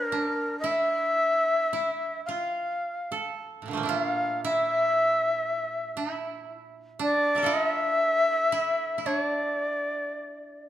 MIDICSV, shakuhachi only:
0, 0, Header, 1, 2, 480
1, 0, Start_track
1, 0, Tempo, 1086957
1, 283, Time_signature, 2, 2, 24, 8
1, 1728, Tempo, 1025641
1, 4128, Tempo, 1075269
1, 4865, End_track
2, 0, Start_track
2, 0, Title_t, "Shakuhachi"
2, 0, Program_c, 0, 77
2, 0, Note_on_c, 0, 74, 107
2, 38, Note_off_c, 0, 74, 0
2, 38, Note_on_c, 0, 70, 107
2, 259, Note_off_c, 0, 70, 0
2, 261, Note_on_c, 0, 76, 115
2, 977, Note_off_c, 0, 76, 0
2, 997, Note_on_c, 0, 77, 96
2, 1468, Note_off_c, 0, 77, 0
2, 1733, Note_on_c, 0, 76, 92
2, 1789, Note_off_c, 0, 76, 0
2, 1789, Note_on_c, 0, 77, 92
2, 1961, Note_off_c, 0, 77, 0
2, 1981, Note_on_c, 0, 76, 121
2, 2920, Note_off_c, 0, 76, 0
2, 3183, Note_on_c, 0, 74, 110
2, 3427, Note_on_c, 0, 76, 116
2, 3434, Note_off_c, 0, 74, 0
2, 4137, Note_on_c, 0, 73, 92
2, 4144, Note_off_c, 0, 76, 0
2, 4195, Note_off_c, 0, 73, 0
2, 4195, Note_on_c, 0, 74, 92
2, 4852, Note_off_c, 0, 74, 0
2, 4865, End_track
0, 0, End_of_file